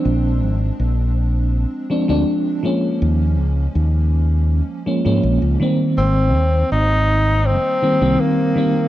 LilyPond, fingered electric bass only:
\new Staff \with { instrumentName = "Fingered electric bass" } { \clef bass \time 4/4 \key aes \major \tempo 4 = 81 bes,,8 aes,,16 r16 bes,,4~ bes,,16 r8 d,16 r4 | ees,8 des,16 r16 ees,4~ ees,16 r8 aes,16 bes,,16 des,16 r8 | aes,,8 ees,16 r16 aes,,4~ aes,,16 r8 c,16 r4 | }